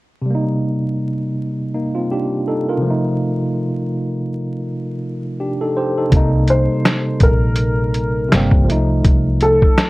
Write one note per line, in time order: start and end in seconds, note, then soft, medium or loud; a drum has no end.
0.22 2.76 C3 medium
0.26 2.78 G3 medium
0.30 1.72 A#3 medium
0.35 1.73 D#4 medium
1.75 1.94 A#3 soft
1.75 1.94 D#4 medium
1.95 2.10 C4 medium
1.95 2.09 F4 medium
2.12 2.46 D4 soft
2.12 2.45 G4 medium
2.48 2.68 D#4 medium
2.48 2.67 A4 medium
2.69 3.03 F4 medium
2.69 3.03 A#4 medium
2.77 5.69 C3 medium
2.81 5.71 F3 medium
2.86 5.73 A3 medium
2.90 5.39 D#4 medium
5.40 5.60 D4 soft
5.40 5.60 G4 medium
5.61 5.76 D#4 medium
5.61 5.75 A4 medium
5.77 5.97 G4 medium
5.77 5.96 C5 medium
5.98 6.15 D#4 soft
5.98 6.32 A4 medium
6.10 6.66 C2 loud
6.10 7.16 C3 medium
6.10 7.17 G3 medium
6.10 kick medium
6.10 closed hi-hat medium
6.14 7.18 A#3 medium
6.14 7.19 D#4 medium
6.48 7.19 C5 medium
6.48 closed hi-hat medium
6.85 snare loud
6.85 closed hi-hat medium
7.20 8.27 A#1 medium
7.20 8.49 A#4 medium
7.20 kick medium
7.20 closed hi-hat medium
7.56 closed hi-hat medium
7.94 closed hi-hat medium
8.29 8.65 G1 medium
8.29 8.58 C3 medium
8.29 8.59 G3 medium
8.29 snare loud
8.29 closed hi-hat medium
8.33 8.60 A#3 medium
8.33 8.61 C4 medium
8.51 kick medium
8.65 9.85 F3 medium
8.65 9.86 A3 medium
8.69 9.02 C2 medium
8.69 9.88 D#4 medium
8.69 closed hi-hat medium
9.04 9.59 C2 medium
9.04 kick loud
9.04 closed hi-hat medium
9.40 9.90 A4 medium
9.40 closed hi-hat medium
9.62 kick medium
9.78 snare loud
9.78 closed hi-hat medium